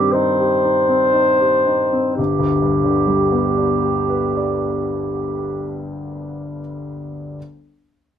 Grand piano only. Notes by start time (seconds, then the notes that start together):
Already playing: G2 D#3 G3 C4
0.14 D#4
0.40 G4
0.64 D#4
0.89 C4
1.13 D#4
1.40 G4
1.67 D#4
1.93 C4
2.18 G1
2.39 D2
2.62 G2
2.84 D3
3.07 G3
3.32 B3
3.57 D4
3.83 G4
4.09 B4
4.37 D5